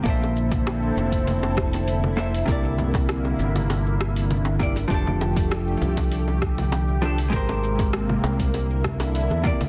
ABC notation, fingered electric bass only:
X:1
M:4/4
L:1/16
Q:1/4=99
K:Bblyd
V:1 name="Fingered electric bass" clef=bass
B,,,6 F,,,8- F,,,2 | C,,6 G,,,8- G,,,2 | F,,,6 C,,8- C,,2 | _A,,,6 C,,6- C,, E,, z D,, |]